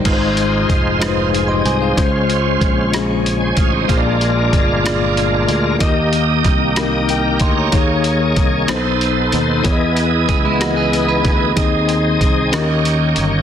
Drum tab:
CC |x-----|------|------|------|
HH |xxxxxx|xxxxxx|xxxxxx|xxxxxx|
SD |---r--|---r--|---r--|--rr--|
BD |o-o---|o-o--o|o-o---|o-o--o|

CC |------|------|------|
HH |xxxxxx|xxxxxx|xxxxxx|
SD |---r--|---r--|---r--|
BD |o-o---|o-o--o|o-o---|